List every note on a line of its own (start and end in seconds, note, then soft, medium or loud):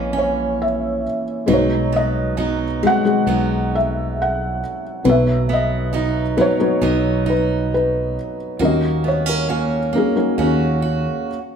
0.00 1.06 A#1 medium
0.00 1.45 A#1 soft
0.00 1.45 A#2 soft
0.00 1.47 E3 soft
0.00 1.50 A#3 medium
0.00 1.57 A#3 soft
0.00 0.12 C#4 medium
0.00 1.50 C#4 soft
0.00 1.50 E4 soft
0.00 1.48 B4 medium
0.00 0.18 C#5 medium
0.00 0.18 D#5 medium
0.13 1.48 C#4 medium
0.18 0.62 C#5 medium
0.62 1.23 E5 medium
1.46 5.00 B1 soft
1.46 2.84 B1 medium
1.46 5.00 B2 soft
1.46 2.37 F#3 medium
1.46 2.64 G#3 medium
1.46 2.65 D#4 soft
1.46 2.38 D#4 medium
1.46 1.51 F#4 soft
1.46 2.65 B4 medium
1.53 2.82 F#4 medium
1.53 1.93 C#5 medium
1.92 2.37 B3 soft
1.92 2.86 D#5 medium
2.37 2.82 F#3 soft
2.37 3.27 B3 soft
2.37 3.28 D#4 soft
2.83 3.27 F#3 soft
2.83 3.02 G#3 medium
2.83 3.02 D#4 soft
2.83 3.02 F#4 soft
2.83 3.02 G#4 medium
2.87 3.76 F#5 loud
3.04 4.60 D#3 medium
3.04 4.60 G#3 medium
3.04 4.60 F#4 medium
3.04 4.60 G#4 medium
3.27 4.62 B1 medium
3.27 5.05 F#3 soft
3.27 5.14 B3 soft
3.27 4.22 D#4 medium
3.75 4.19 E5 medium
4.22 4.81 F#5 medium
5.04 6.40 B1 medium
5.04 8.56 B1 soft
5.04 8.56 B2 medium
5.04 6.21 D#3 medium
5.04 6.21 F#3 medium
5.04 5.92 F#3 medium
5.04 6.21 B3 medium
5.04 5.08 B4 medium
5.09 6.36 B4 medium
5.09 5.53 E5 medium
5.49 5.92 B3 soft
5.53 6.36 D#5 medium
5.93 6.37 F#3 soft
5.93 6.81 B3 soft
5.93 6.82 D#4 medium
6.37 6.57 F#3 medium
6.37 6.81 F#3 soft
6.37 6.57 B3 medium
6.37 6.57 D#4 medium
6.37 6.57 B4 medium
6.41 7.31 C#5 loud
6.59 8.15 F#3 medium
6.59 8.16 B3 medium
6.59 8.16 D#4 medium
6.59 7.28 B4 medium
6.81 8.17 B1 medium
6.81 8.69 F#3 medium
6.81 8.59 B3 medium
6.81 7.25 D#4 medium
7.26 8.69 D#4 medium
7.26 7.73 B4 medium
7.74 8.36 B4 medium
8.59 9.96 D#2 medium
8.59 11.26 D#2 soft
8.59 11.26 D#3 soft
8.59 9.77 F#3 medium
8.59 9.47 A#3 medium
8.59 9.78 C#4 soft
8.59 9.78 D#4 soft
8.59 9.49 F#4 soft
8.59 9.28 A#4 medium
8.65 10.37 F#4 medium
8.65 9.08 D#5 medium
9.04 9.26 B3 soft
9.08 9.27 C#5 medium
9.26 9.48 C#4 soft
9.26 9.94 A#4 medium
9.49 9.91 A#3 soft
9.49 10.37 C#4 soft
9.49 10.38 F#4 soft
9.93 10.14 F#3 medium
9.93 10.37 A#3 soft
9.93 10.14 C#4 medium
9.93 10.14 D#4 soft
9.93 10.14 A#4 medium
9.97 10.37 G#4 medium
10.15 11.29 F#3 medium
10.15 10.41 C#4 soft
10.15 11.29 D#4 soft
10.15 11.29 A#4 medium
10.38 11.07 D#2 medium
10.38 11.38 A#3 soft
10.38 11.38 C#4 soft
10.38 10.81 F#4 medium
10.42 11.56 C#4 soft
10.42 11.56 F#4 medium
10.82 11.37 F#4 medium